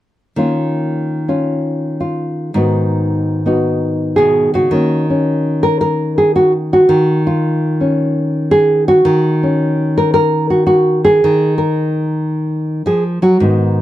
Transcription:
0.36 2.54 D#3 medium
0.36 2.52 A#3 soft
0.36 1.27 C#4 soft
0.36 1.27 F4 medium
1.28 2.52 C#4 soft
1.28 1.99 F4 medium
2.00 2.54 F4 medium
2.54 4.69 G#2 medium
2.54 4.70 D#3 soft
2.54 3.44 B3 soft
2.54 3.45 D#4 soft
2.54 3.46 F#4 medium
3.46 4.69 B3 soft
3.46 4.70 D#4 soft
3.46 4.16 F#4 medium
4.16 4.53 B2 soft
4.16 4.53 G#4 medium
4.54 4.71 C#3 soft
4.54 5.62 F#4 medium
4.71 6.88 D#3 medium
4.71 8.22 A#3 soft
4.71 5.09 C#4 soft
5.10 6.92 C#4 soft
5.63 5.80 A#4 medium
5.81 6.17 A#4 medium
6.18 6.34 G#4 medium
6.36 6.52 F#4 medium
6.73 7.26 F#4 medium
6.89 9.05 D#3 medium
7.27 8.51 F4 medium
7.81 9.08 C#4 soft
8.51 8.88 G#4 loud
8.88 9.96 F#4 loud
9.05 11.23 D#3 medium
9.43 11.21 C#4 soft
9.98 10.13 A#4 loud
10.14 10.50 A#4 loud
10.50 10.65 F#4 medium
10.67 11.04 F#4 medium
11.05 11.57 G#4 medium
11.24 12.85 D#3 medium
11.58 12.85 A#4 medium
12.86 13.22 F3 medium
12.86 13.03 G#4 medium
13.22 13.40 F#3 medium
13.22 13.82 F#4 medium
13.40 13.82 G#2 medium
13.40 13.82 D#3 soft
13.40 13.82 B3 soft
13.40 13.82 D#4 soft

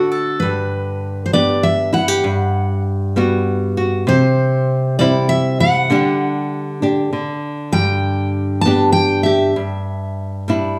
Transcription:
0.00 2.25 D3 medium
0.00 0.42 A3 medium
0.00 0.49 D4 soft
0.00 0.39 F#4 medium
0.00 0.10 A4 medium
0.00 0.49 F#5 medium
0.12 0.48 A4 medium
0.40 2.21 G2 medium
0.40 1.25 B4 medium
1.26 1.33 C5 medium
1.33 2.21 B3 soft
1.33 2.21 D4 soft
1.33 1.92 G4 medium
1.33 1.65 D5 medium
1.63 1.93 E5 medium
1.93 2.08 E4 soft
1.93 2.81 F#5 medium
2.08 2.24 G4 soft
2.24 4.04 G2 medium
3.16 4.98 G3 soft
3.16 4.08 B3 soft
3.16 3.76 F#4 medium
3.77 4.04 F#4 medium
4.07 5.86 C3 medium
4.07 4.98 C5 medium
4.99 5.89 G3 soft
4.99 5.88 C4 soft
4.99 5.59 E4 medium
4.99 5.30 D5 medium
5.29 5.60 E5 medium
5.60 5.91 E4 medium
5.60 6.48 F#5 medium
5.90 7.11 D3 medium
5.90 7.12 G3 soft
5.90 6.82 D4 medium
5.90 6.82 G4 medium
6.82 8.66 D4 soft
6.82 7.09 G4 soft
7.13 9.56 D3 medium
7.72 9.52 G2 medium
7.72 8.61 G5 medium
8.61 9.53 B3 soft
8.61 8.92 A5 medium
8.66 9.53 D4 soft
8.66 9.25 G4 medium
8.92 9.23 G5 medium
9.23 9.52 G4 medium
9.23 10.42 E5 medium
9.56 10.79 G2 medium
10.48 10.79 G3 soft
10.48 10.79 D4 soft
10.48 10.79 E4 soft

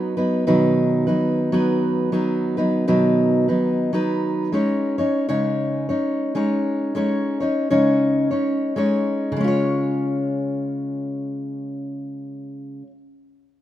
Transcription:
0.00 0.17 F#3 medium
0.00 0.17 B3 medium
0.00 0.16 D#4 medium
0.00 0.16 B4 medium
0.17 0.47 F#3 soft
0.17 0.46 B3 medium
0.17 0.46 D#4 medium
0.17 0.46 B4 medium
0.47 1.08 B2 medium
0.47 2.88 D#3 medium
0.47 1.08 F#3 medium
0.47 1.07 B3 medium
0.47 1.07 D#4 medium
0.47 1.06 B4 medium
1.07 1.51 F#3 soft
1.07 1.52 B3 soft
1.07 1.53 D#4 medium
1.07 1.52 B4 medium
1.52 2.11 F#3 medium
1.52 2.12 B3 medium
1.52 2.13 D#4 medium
1.52 2.13 B4 medium
2.12 2.57 F#3 medium
2.12 2.58 B3 medium
2.12 2.57 D#4 medium
2.12 2.56 B4 medium
2.57 2.87 F#3 soft
2.57 2.87 B3 medium
2.57 2.87 D#4 medium
2.57 2.86 B4 medium
2.88 3.48 B2 medium
2.88 4.56 D#3 medium
2.88 3.48 F#3 medium
2.88 3.48 B3 medium
2.88 3.48 D#4 medium
2.88 3.47 B4 medium
3.48 3.92 F#3 soft
3.48 3.92 B3 soft
3.48 3.93 D#4 soft
3.48 3.93 B4 medium
3.93 4.52 F#3 medium
3.93 4.53 B3 medium
3.93 4.54 D#4 medium
3.93 4.54 B4 medium
4.52 4.98 G#3 medium
4.52 4.99 C#4 medium
4.52 4.98 D#4 medium
4.52 4.97 C#5 medium
4.98 5.28 C#4 medium
4.98 5.28 D#4 medium
4.98 5.27 C#5 medium
5.29 5.90 C#3 medium
5.29 6.34 G#3 medium
5.29 5.90 C#4 medium
5.29 5.89 D#4 medium
5.29 5.88 C#5 medium
5.89 6.34 C#4 soft
5.89 6.35 D#4 medium
5.89 6.34 C#5 medium
6.35 6.94 G#3 medium
6.35 6.95 C#4 medium
6.35 6.95 D#4 medium
6.35 6.97 C#5 medium
6.95 7.40 G#3 medium
6.95 7.41 C#4 medium
6.95 7.40 D#4 medium
6.95 7.39 C#5 medium
7.40 7.70 C#4 soft
7.40 7.70 D#4 medium
7.40 7.69 C#5 medium
7.70 8.31 C#3 medium
7.70 8.76 G#3 medium
7.70 8.32 C#4 medium
7.70 8.31 D#4 medium
7.70 8.30 C#5 medium
8.31 8.76 C#4 soft
8.31 8.76 D#4 soft
8.31 8.76 C#5 medium
8.76 9.36 G#3 medium
8.76 9.40 C#4 medium
8.76 9.37 D#4 medium
8.76 9.47 C#5 medium
9.32 12.82 C#3 medium
9.37 12.87 G#3 medium
9.37 12.90 C#4 medium
9.44 12.94 F4 medium
9.44 12.97 C#5 medium

